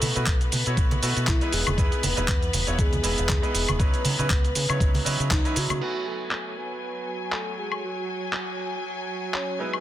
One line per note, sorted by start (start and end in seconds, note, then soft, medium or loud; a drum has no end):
0.00 0.13 B2 medium
0.00 0.12 A3 medium
0.00 0.13 B3 medium
0.00 5.83 B3 medium
0.00 0.13 E4 medium
0.00 0.13 F#4 medium
0.00 0.74 A4 medium
0.00 0.13 B4 medium
0.00 5.83 B4 medium
0.00 open hi-hat medium
0.00 high conga medium
0.00 shaker medium
0.15 0.25 B2 medium
0.15 0.23 A3 medium
0.15 0.23 B3 medium
0.15 0.23 E4 medium
0.15 0.23 F#4 medium
0.15 0.23 B4 medium
0.15 closed hi-hat soft
0.15 low conga medium
0.15 shaker soft
0.26 0.48 B1 medium
0.26 kick loud
0.26 clap loud
0.26 closed hi-hat medium
0.26 shaker soft
0.41 closed hi-hat soft
0.41 shaker soft
0.52 0.64 B2 loud
0.52 open hi-hat loud
0.52 high conga medium
0.52 shaker medium
0.66 0.76 B2 medium
0.66 1.00 A3 medium
0.66 1.00 B3 medium
0.66 1.00 E4 medium
0.66 1.00 F#4 medium
0.66 1.01 C#5 medium
0.66 closed hi-hat soft
0.66 shaker soft
0.77 0.98 B1 medium
0.77 kick loud
0.77 closed hi-hat medium
0.77 shaker soft
0.91 closed hi-hat soft
0.91 high conga medium
0.91 shaker soft
1.02 1.14 B2 loud
1.02 1.38 A3 medium
1.02 1.38 B3 medium
1.02 1.39 E4 medium
1.02 1.39 F#4 medium
1.02 1.39 B4 medium
1.02 open hi-hat medium
1.02 shaker medium
1.16 1.26 B2 loud
1.16 closed hi-hat soft
1.16 shaker soft
1.27 1.39 B1 medium
1.27 1.54 E4 medium
1.27 kick loud
1.27 clap loud
1.27 closed hi-hat medium
1.27 high conga medium
1.27 shaker soft
1.41 1.75 G#3 medium
1.41 1.75 B3 medium
1.41 1.76 D#4 medium
1.41 1.76 E4 medium
1.41 1.76 B4 loud
1.41 closed hi-hat soft
1.41 shaker soft
1.52 1.65 E1 medium
1.52 2.06 G#4 loud
1.52 open hi-hat loud
1.52 shaker medium
1.67 1.76 E1 medium
1.67 closed hi-hat soft
1.67 high conga medium
1.67 high woodblock medium
1.67 shaker soft
1.77 1.90 E2 medium
1.77 2.14 G#3 medium
1.77 2.14 B3 medium
1.77 2.14 D#4 medium
1.77 2.14 E4 medium
1.77 2.14 B4 loud
1.77 kick loud
1.77 closed hi-hat medium
1.77 shaker soft
1.92 closed hi-hat soft
1.92 shaker soft
2.03 2.15 E1 medium
2.03 2.82 B4 loud
2.03 open hi-hat loud
2.03 high conga medium
2.03 shaker medium
2.16 2.27 E1 medium
2.16 2.24 G#3 medium
2.16 2.24 B3 medium
2.16 2.24 D#4 medium
2.16 2.25 E4 medium
2.16 2.25 B4 medium
2.16 closed hi-hat soft
2.16 low conga medium
2.16 shaker soft
2.28 2.50 E2 medium
2.28 kick loud
2.28 clap loud
2.28 closed hi-hat medium
2.28 shaker soft
2.42 closed hi-hat soft
2.42 shaker soft
2.53 2.65 E1 loud
2.53 open hi-hat loud
2.53 high conga medium
2.53 shaker medium
2.67 2.77 E1 medium
2.67 3.01 G#3 medium
2.67 3.01 B3 medium
2.67 3.01 D#4 medium
2.67 3.01 E4 medium
2.67 3.02 C#5 medium
2.67 closed hi-hat soft
2.67 shaker soft
2.79 3.00 E2 medium
2.79 3.30 G#4 loud
2.79 kick loud
2.79 closed hi-hat medium
2.79 shaker soft
2.93 closed hi-hat soft
2.93 high conga medium
2.93 shaker soft
3.03 3.16 E1 loud
3.03 3.40 G#3 medium
3.03 3.40 B3 medium
3.03 3.40 D#4 medium
3.03 3.40 E4 medium
3.03 3.40 B4 medium
3.03 open hi-hat medium
3.03 shaker medium
3.18 3.27 E1 loud
3.18 closed hi-hat soft
3.18 shaker soft
3.29 3.41 E2 medium
3.29 3.82 G#4 loud
3.29 kick loud
3.29 clap loud
3.29 closed hi-hat medium
3.29 high conga medium
3.29 shaker soft
3.42 3.77 G#3 medium
3.42 3.77 B3 medium
3.42 3.77 D#4 medium
3.42 3.77 E4 medium
3.42 3.77 B4 loud
3.42 closed hi-hat soft
3.42 shaker soft
3.55 3.66 E1 medium
3.55 open hi-hat loud
3.55 shaker medium
3.69 3.78 E1 medium
3.69 closed hi-hat soft
3.69 high conga medium
3.69 high woodblock medium
3.69 shaker soft
3.79 3.91 C#2 loud
3.79 4.15 F#3 medium
3.79 4.15 C#4 medium
3.79 4.16 D#4 medium
3.79 4.16 E4 medium
3.79 4.16 B4 loud
3.79 5.32 B4 loud
3.79 kick loud
3.79 closed hi-hat medium
3.79 shaker soft
3.94 closed hi-hat soft
3.94 shaker soft
4.05 4.17 C#3 medium
4.05 open hi-hat loud
4.05 high conga medium
4.05 shaker medium
4.19 4.28 C#3 medium
4.19 4.26 F#3 medium
4.19 4.26 C#4 medium
4.19 4.26 D#4 medium
4.19 4.27 E4 medium
4.19 4.27 B4 medium
4.19 closed hi-hat soft
4.19 low conga medium
4.19 shaker soft
4.30 4.51 C#2 medium
4.30 kick loud
4.30 clap loud
4.30 closed hi-hat medium
4.30 shaker soft
4.45 closed hi-hat soft
4.45 shaker soft
4.55 4.67 C#3 loud
4.55 open hi-hat loud
4.55 high conga medium
4.55 shaker medium
4.69 4.79 C#3 medium
4.69 5.03 F#3 medium
4.69 5.03 C#4 medium
4.69 5.03 D#4 medium
4.69 5.03 E4 medium
4.69 5.04 C#5 medium
4.69 closed hi-hat soft
4.69 high woodblock medium
4.69 shaker soft
4.80 5.02 C#2 medium
4.80 kick loud
4.80 closed hi-hat medium
4.80 shaker soft
4.94 open hi-hat medium
4.94 high conga medium
4.94 shaker soft
5.05 5.17 C#3 medium
5.05 5.41 F#3 medium
5.05 5.42 C#4 medium
5.05 5.42 D#4 medium
5.05 5.42 E4 medium
5.05 5.42 B4 medium
5.05 open hi-hat loud
5.05 shaker medium
5.20 5.29 C#3 loud
5.20 closed hi-hat soft
5.20 shaker soft
5.31 5.43 C#2 medium
5.31 5.59 D#4 medium
5.31 kick loud
5.31 clap loud
5.31 closed hi-hat medium
5.31 high conga medium
5.31 shaker soft
5.45 5.79 F#3 medium
5.45 5.79 C#4 medium
5.45 5.79 D#4 medium
5.45 5.79 E4 medium
5.45 5.79 B4 loud
5.45 closed hi-hat soft
5.45 shaker soft
5.56 5.68 C#3 medium
5.56 6.08 F#4 loud
5.56 open hi-hat loud
5.56 shaker medium
5.70 5.79 C#3 medium
5.70 closed hi-hat soft
5.70 high conga medium
5.70 high woodblock medium
5.70 shaker soft
5.80 9.80 F#3 medium
5.80 9.57 A3 medium
5.80 9.57 B3 medium
5.80 9.57 E4 medium
5.80 9.57 F#4 medium
5.80 9.58 B4 medium
5.80 9.80 G#5 medium
5.80 crash medium
6.07 6.59 A4 loud
6.31 clap loud
6.57 7.32 B4 loud
7.32 7.60 A4 medium
7.32 clap loud
7.59 7.85 G#4 medium
7.72 high woodblock medium
7.83 8.84 F#4 medium
8.33 clap loud
9.34 9.61 C#5 medium
9.34 clap loud
9.59 9.80 G#3 medium
9.59 9.80 B3 medium
9.59 9.80 D#4 medium
9.59 9.80 E4 medium
9.59 9.80 B4 medium
9.73 high woodblock medium